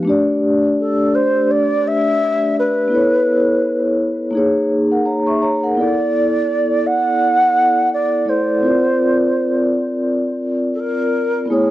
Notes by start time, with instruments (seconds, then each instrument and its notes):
0.03 vibraphone A3 D4
0.07 vibraphone G4 D5
0.80 alto flute A4
1.15 alto flute C5
1.51 alto flute D5
1.88 alto flute E5
2.59 alto flute B4
2.88 vibraphone B3 E4
2.92 vibraphone A4 C#5
4.31 vibraphone A#3 D#4
4.35 vibraphone G#4 C#5
4.92 vibraphone A#4 F#5
5.06 vibraphone C#5 A#5
5.27 vibraphone E5 C#6
5.42 vibraphone C#5 A#5
5.63 vibraphone A#4 F#5
5.75 vibraphone B3 E4
5.79 vibraphone A4 D5, alto flute D5
6.87 alto flute F#5
7.93 alto flute D5
8.25 vibraphone A3 E4 A4 D5, alto flute C5
8.61 vibraphone C4 F4
8.65 vibraphone A#4 D5
10.74 alto flute A4
10.80 alto flute A#4
11.46 vibraphone B3 E4
11.50 vibraphone A3 C#5, alto flute G#4